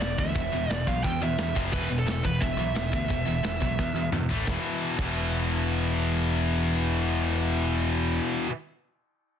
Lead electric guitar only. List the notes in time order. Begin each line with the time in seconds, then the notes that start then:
Already playing: D5
0.19 E5
0.71 D5
0.88 F5
1.04 G5
1.23 E5
1.73 B4
1.99 A4
2.25 B4
2.41 E5